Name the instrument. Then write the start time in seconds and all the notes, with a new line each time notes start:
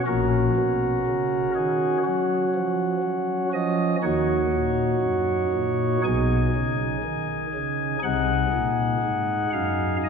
pipe organ
0.07 A#1 A#2 C#4 F#4 A#4
0.57 B2
1.06 C#3
1.55 D#3 G#4
2.05 F#3 F#4
2.55 F3
3.03 F#3
3.53 F3 D#5
4.03 D#2 D#3 D#4 F#4 C#5
4.53 A#2
5.01 F#2
5.52 A#2
6.04 B1 B2 D#4 G#4 G#5
6.55 C#3
7.04 D#3
7.54 C#3
8.03 C2 C3 D#4 G#4 F#5
8.53 A#2
9.03 G#2
9.53 F#2 F5
10.04 G#2 D#5